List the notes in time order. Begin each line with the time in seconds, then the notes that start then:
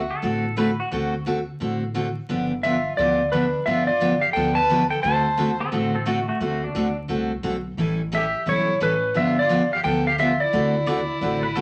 Already playing: F#4 E5
0.11 A4
0.22 A1 D3 A3 C4 F#4 A4
0.57 D3 A3 C4 F#4 A4 B4
0.80 F#4
0.91 D2 D3 A3 C4 F#4 A4
1.26 D3 A3 C4 F#4 A4
1.60 A1 D3 A3 C4 F#4 A4
1.94 D3 A3 C4 F#4 A4
2.29 G1 D3 F3 B3 D4 G4
2.63 D3 F3 B3 D4 F4 G4 E5
2.97 D2 D3 F3 B3 D4 F4 G4 D5
3.31 D3 F3 B3 D4 G4 B4
3.66 G1 D3 F3 B3 D4 F4 G4 E5
3.86 F4 D5
4.00 D3 F3 B3 D4 G4
4.20 G4 F5
4.33 D2 D3 F3 B3 D4 A4 G5
4.37 G4
4.55 B4 A5
4.70 D3 F3 B3 D4 G4
4.90 A4 G5
5.03 D2 D3 A3 C4 F#4 A4 C5 A5
5.37 D3 A3 C4 F#4 A4
5.60 C4 A4
5.71 A1 D3 A3 C4 F#4 A4
5.95 C4 A4
6.05 D3 A3 C4 F#4 A4
6.28 A3 F#4
6.40 D2 D3 A3 C4 F#4 A4
6.64 D4
6.75 D2 D3 A3 C4 F#4 A4
7.08 C2 D3 A3 C4 F#4 A4
7.43 B1 D3 A3 C4 F#4 A4
7.77 A1 E3 G3 C#4 E4 A4
8.12 E3 G3 C#4 E4 G4 A4 E5
8.46 B1 E3 G3 C#4 E4 A4 C#5
8.80 A1 E3 G3 C#4 E4 A4 B4
9.14 G1 D3 F3 B3 D4 F4 G4 E5
9.39 F4 D5
9.49 D3 F3 B3 D4 G4
9.73 G4 F5
9.84 D2 D3 F3 B3 D4 G4 A4 G5
10.07 G4 F5
10.18 D3 F3 B3 D4 F4 G4 E5
10.40 E4 D5
10.53 D2 D3 A3 C4 F#4 A4
10.86 D3 A3 C4 F#4 A4 D5
11.21 A1 D3 A3 C4 F#4 A4
11.43 B4
11.55 D3 A3 C4 F#4 A4